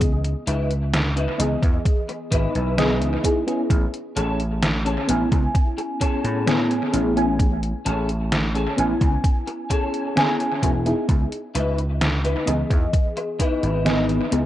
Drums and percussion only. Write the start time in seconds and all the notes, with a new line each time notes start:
0.01 kick, closed hi-hat
0.24 closed hi-hat
0.47 closed hi-hat
0.71 closed hi-hat
0.94 snare, closed hi-hat
1.17 closed hi-hat
1.40 closed hi-hat
1.63 kick, closed hi-hat
1.85 kick, closed hi-hat
2.09 closed hi-hat
2.32 kick, closed hi-hat
2.55 closed hi-hat
2.78 snare, closed hi-hat
3.02 closed hi-hat
3.24 kick, closed hi-hat
3.48 closed hi-hat
3.70 kick, closed hi-hat
3.94 closed hi-hat
4.17 closed hi-hat
4.40 closed hi-hat
4.63 snare, closed hi-hat
4.86 closed hi-hat
5.09 closed hi-hat
5.32 kick, closed hi-hat
5.55 kick, closed hi-hat
5.78 closed hi-hat
6.01 kick, closed hi-hat
6.25 closed hi-hat
6.47 snare, closed hi-hat
6.71 closed hi-hat
6.94 closed hi-hat
7.17 closed hi-hat
7.39 kick, closed hi-hat
7.63 closed hi-hat
7.86 closed hi-hat
8.09 closed hi-hat
8.32 snare, closed hi-hat
8.55 closed hi-hat
8.78 closed hi-hat
9.01 kick, closed hi-hat
9.24 kick, closed hi-hat
9.48 closed hi-hat
9.70 kick, closed hi-hat
9.94 closed hi-hat
10.17 snare, closed hi-hat
10.40 closed hi-hat
10.63 kick, closed hi-hat
10.86 closed hi-hat
11.09 kick, closed hi-hat
11.32 closed hi-hat
11.55 closed hi-hat
11.78 closed hi-hat
12.01 snare, closed hi-hat
12.25 closed hi-hat
12.47 closed hi-hat
12.70 kick, closed hi-hat
12.93 kick, closed hi-hat
13.17 closed hi-hat
13.39 kick, closed hi-hat
13.63 closed hi-hat
13.86 snare, closed hi-hat
14.09 closed hi-hat
14.32 closed hi-hat